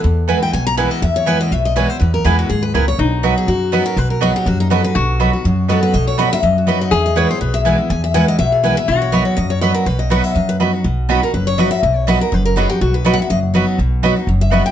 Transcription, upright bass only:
X:1
M:4/4
L:1/8
Q:"Swing" 1/4=244
K:B
V:1 name="Upright bass" clef=bass
E,,4 B,,,4 | E,,4 B,,,4 | E,,2 E,,2 D,,2 C,,2 | B,,,4 F,,4 |
B,,,4 F,,4 | B,,,4 F,,4 | B,,,4 F,,4 | E,,4 B,,,4 |
E,,4 B,,,4 | B,,,4 F,,4 | B,,,4 F,,4 | B,,,4 F,,,4 |
B,,,4 F,,,4 | B,,,4 F,,,4 | B,,,4 F,,,4 |]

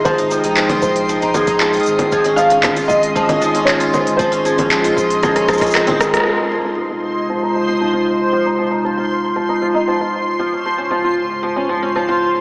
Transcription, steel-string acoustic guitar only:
X:1
M:4/4
L:1/16
Q:1/4=116
K:Ab
V:1 name="Steel-string acoustic guitar"
F, E F, E F, F3 F, E F, E F, F3 | F, D F, D F, F3 F, D F, D F, F3 | F, D F, D F, F3 F, D F, D C C z2 | F, E F, E F, F3 F, E F, E F, F3 |
F, E F, E F, F3 F, E F, E F, F3 | F, D F, D F, F3 F, D F, D F, F3 |]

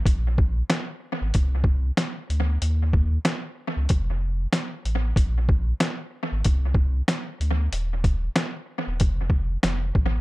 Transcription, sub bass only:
X:1
M:4/4
L:1/16
Q:"Swing 16ths" 1/4=94
K:Cphr
V:1 name="Sub bass" clef=bass
B,,,4 z3 A,,, C,,4 z2 =D,,2 | E,,4 z3 D,, F,,,4 z2 =A,,,2 | B,,,4 z3 A,,, C,,4 z2 =D,,2 | E,,,4 z3 E,,, F,,,4 F,,,2 =A,,,2 |]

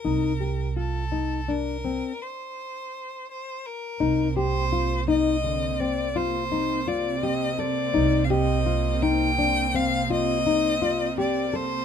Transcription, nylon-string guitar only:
X:1
M:11/8
L:1/8
Q:1/4=84
K:Cdor
V:1 name="Nylon-string guitar"
E G F E D C z4 z | E G F E D, C F E F G A | E G F E D C F E F G A |]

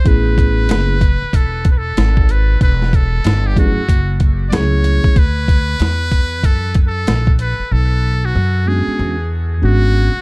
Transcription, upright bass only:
X:1
M:4/4
L:1/16
Q:"Swing 16ths" 1/4=94
K:A
V:1 name="Upright bass" clef=bass
A,,,4 F,,,3 z E,,,4 G,,,4 | E,,,4 =G,,,3 z F,,,4 C,,3 z | D,,4 E,,4 F,,4 _B,,,3 z | B,,,4 F,,3 z E,,4 G,,,3 z |]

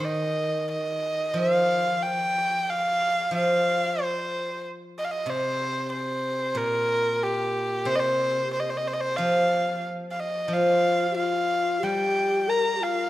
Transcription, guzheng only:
X:1
M:4/4
L:1/8
Q:1/4=92
K:none
V:1 name="Guzheng" clef=bass
_E,4 F,4- | F,2 F,6 | C,4 _B,,4 | C,4 F,4 |
F,4 G,4 |]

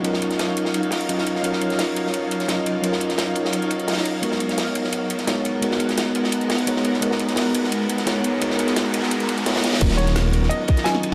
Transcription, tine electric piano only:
X:1
M:4/4
L:1/8
Q:1/4=172
K:Ebm
V:1 name="Tine electric piano"
[G,DEFB]6 [G,DEFe] z | [G,DEFB]6 [G,DEFe] z | [G,DEFB]6 z2 | [A,CEGB]6 [A,CEGd] z |
[A,CEGB]6 [A,CEGd] z | [A,CEGB]6 [A,CEGd] z | [A,CEGB]6 [A,CEGd] z | [G,DEFB]6 [G,DEFe] z |]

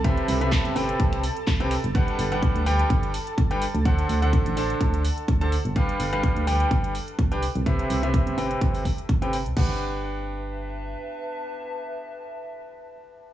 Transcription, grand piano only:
X:1
M:4/4
L:1/16
Q:"Swing 16ths" 1/4=126
K:G
V:1 name="Grand piano"
[C,CGBe]3 [C,CGBe]3 [C,CGBg]4 z3 [C,CGBg] z2 | [G,DGBf]3 [G,DGBf]3 [G,DGBg]4 z3 [G,DGBg] z2 | [D,DAcf]3 [D,DAcf]3 [D,DAca]4 z3 [D,DAca] z2 | [G,DGB=f]3 [G,DGBf]3 [G,DGBg]4 z3 [DGBg] z2 |
[C,CGBe]3 [C,CGBe]3 [C,CGBg]4 z3 [C,CGBg] z2 | [DGBf]16- | [DGBf]16 |]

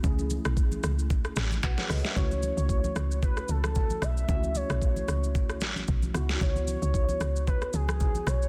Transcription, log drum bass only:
X:1
M:4/4
L:1/16
Q:"Swing 16ths" 1/4=113
K:Bmix
V:1 name="Log drum bass" clef=bass
C,,3 B,,,3 C,,4 A,,,2 B,,, z C,, z | C,,3 C,,3 C,,4 C,,4 B,,,2 | C,,3 B,,,3 C,,4 A,,,2 B,,,2 C,,2 | C,,3 C,,3 C,,4 C,,4 B,,,2 |]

